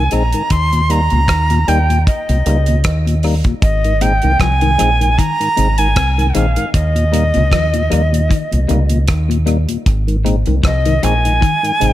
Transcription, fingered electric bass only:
0.12 0.32 A#1 medium
0.51 1.08 D#2 loud
1.12 1.28 C#2 medium
1.29 1.65 D#2 medium
1.68 2.04 D#2 medium
2.29 2.45 C2 medium
2.46 2.82 C#2 medium
2.85 3.42 D#2 loud
3.63 4.19 G#1 medium
4.24 4.40 C2 medium
4.40 4.76 C2 medium
4.81 5.16 A#1 medium
5.58 5.94 G#1 medium
5.97 6.33 C2 medium
6.36 6.56 A#1 medium
6.75 7.31 D#2 loud
7.37 7.52 C#2 medium
7.52 7.88 D#2 medium
7.92 8.28 D#2 medium
8.53 8.68 C2 medium
8.70 9.06 C#2 medium
9.09 9.65 D#2 loud
9.87 10.43 G#1 medium
10.47 10.63 C2 loud
10.64 11.00 C2 loud
11.04 11.39 A#1 medium
11.82 11.93 G#1 medium

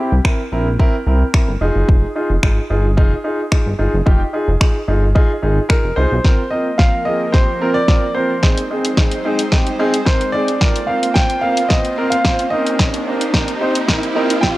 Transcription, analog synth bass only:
0.12 0.20 C2 medium
0.52 0.77 A#1 medium
1.07 1.23 C2 medium
1.49 1.56 G1 medium
1.61 1.70 F1 loud
1.76 1.83 F#1 medium
1.89 2.05 F1 loud
2.30 2.38 F1 medium
2.43 2.60 G#1 medium
2.70 2.99 G1 medium
2.98 3.14 F1 loud
3.66 3.74 G1 medium
3.79 3.88 G1 medium
3.94 4.02 F#1 medium
4.07 4.23 F1 loud
4.48 4.56 F1 loud
4.88 5.14 G1 medium
5.43 5.60 G#1 medium
5.85 5.92 F1 medium
5.97 6.06 C2 medium
6.12 6.20 B1 medium

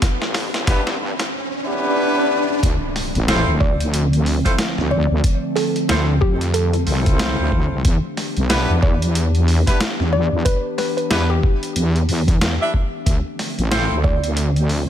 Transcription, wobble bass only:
0.22 0.65 A1 loud
0.67 1.16 G2 loud
2.63 2.79 D2 loud
3.15 3.45 A1 medium
3.47 4.42 D2 loud
4.78 5.08 D2 loud
5.11 5.22 D2 medium
5.89 6.20 D2 loud
6.22 6.85 F2 medium
6.87 7.36 C2 loud
7.39 7.69 D2 loud
7.72 7.83 C2 medium
7.85 8.01 E2 loud
8.37 8.66 B1 loud
8.70 9.64 E2 loud
10.00 10.29 E2 loud
10.32 10.44 E2 medium
11.11 11.41 E2 loud
11.76 12.07 E2 medium
12.09 12.58 E2 medium
13.06 13.23 D2 loud
13.59 13.88 A1 medium
13.91 14.86 D2 loud

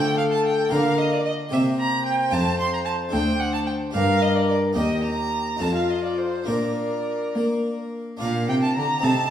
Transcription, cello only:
0.00 0.68 D3 medium
0.72 1.49 D3 medium
1.52 2.29 C3 medium
2.33 3.09 F2 medium
3.13 3.91 D2 medium
3.95 4.72 G2 medium
4.76 5.56 D#2 medium
5.61 6.43 F2 medium
6.48 7.31 A#2 medium
7.35 8.17 A#3 medium
8.21 8.50 A#2 medium
8.48 8.76 C3 medium
8.76 8.84 D3 medium
9.03 9.11 C3 medium

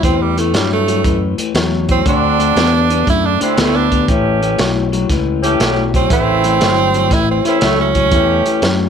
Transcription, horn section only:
2.05 2.70 C4 medium
2.05 2.70 D4 medium
2.05 2.70 F#4 medium
3.41 3.85 C4 medium
3.41 3.85 D4 medium
3.41 3.85 E4 medium
4.08 4.72 A3 medium
4.08 4.72 C#4 medium
4.08 4.72 G4 medium
5.43 5.87 A3 medium
5.43 5.87 C#4 medium
5.43 5.87 G4 medium
6.10 6.74 C#3 medium
6.10 6.74 A3 medium
6.10 6.74 E4 medium
7.44 7.88 A3 medium
7.44 7.89 C#4 medium
7.44 7.89 E4 medium
8.12 8.76 A3 medium
8.12 8.76 C#4 medium
8.12 8.76 G4 medium

